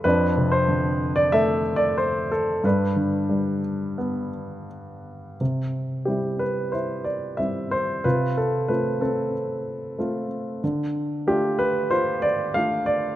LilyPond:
<<
  \new Staff \with { instrumentName = "Grand piano" } { \time 4/4 \key c \major \tempo 4 = 92 << { b'8. c''4 d''16 \tuplet 3/2 { e''4 d''8 } c''8 a'8 | b'4. r2 r8 | r4 g'8 b'8 c''8 d''8 e''8 c''8 | b'8 a'8 b'8 a'2 r8 |
r4 g'8 b'8 c''8 d''8 f''8 d''8 | } \\ { d'2 a'2 | d'2 r2 | r2 e'2 | f'4. c'2 r8 |
r2 f'2 | } >> }
  \new Staff \with { instrumentName = "Grand piano" } { \time 4/4 \key c \major f,8 c8 d4 a2 | g,8 d8 g4 b2 | c4 <g c' e'>4 r4 <g c' e'>4 | c4 <a c' f'>4 r4 <a c' f'>4 |
d4 <a d' f'>4 r4 <a d' f'>4 | }
>>